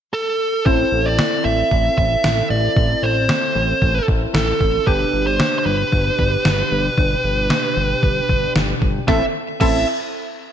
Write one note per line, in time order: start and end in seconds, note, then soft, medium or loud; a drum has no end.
0.14 0.66 A4 medium
0.66 0.84 A1 loud
0.66 4.83 C4 medium
0.66 4.83 E4 medium
0.66 4.83 A4 medium
0.66 1.07 C5 medium
0.66 kick loud
0.92 1.20 A1 loud
1.06 1.45 D5 medium
1.19 snare loud
1.45 1.63 A1 loud
1.45 1.97 E5 loud
1.71 1.90 A1 loud
1.71 kick medium
1.98 2.16 A1 medium
1.98 2.47 E5 loud
1.98 kick medium
2.24 2.42 A1 medium
2.24 snare loud
2.50 2.69 A1 loud
2.50 3.04 D5 loud
2.77 2.95 A1 loud
2.77 kick loud
3.03 3.31 A1 medium
3.03 4.04 C5 medium
3.29 snare loud
3.56 3.74 A1 loud
3.82 4.00 A1 loud
3.82 kick medium
4.08 4.27 A1 loud
4.08 kick medium
4.34 4.53 A1 medium
4.34 4.87 A4 medium
4.34 snare loud
4.61 4.79 A1 loud
4.61 kick medium
4.87 5.05 G1 loud
4.87 9.04 B2 medium
4.87 9.04 D4 medium
4.87 9.04 G4 medium
4.87 5.26 B4 loud
4.87 kick loud
5.13 5.41 G1 medium
5.27 5.57 C5 loud
5.40 snare loud
5.59 5.66 C5 medium
5.66 5.84 G1 medium
5.66 8.51 B4 medium
5.92 6.11 G1 loud
5.92 kick medium
6.19 6.37 G1 loud
6.19 kick medium
6.45 6.63 G1 medium
6.45 snare loud
6.71 6.90 G1 loud
6.98 7.16 G1 loud
6.98 kick loud
7.24 7.52 G1 medium
7.50 snare loud
7.77 7.95 G1 loud
8.03 8.21 G1 loud
8.03 kick medium
8.29 8.48 G1 loud
8.29 kick medium
8.56 8.74 G1 loud
8.56 snare loud
8.82 9.00 G1 loud
8.82 kick medium
9.08 9.23 A1 loud
9.08 9.23 C4 medium
9.08 9.23 E4 medium
9.08 9.23 A4 medium
9.08 9.23 E5 medium
9.08 kick loud
9.08 snare medium
9.61 9.85 A1 loud
9.61 9.85 C4 medium
9.61 9.85 E4 medium
9.61 9.85 A4 medium
9.61 9.85 E5 medium
9.61 kick loud
9.61 crash medium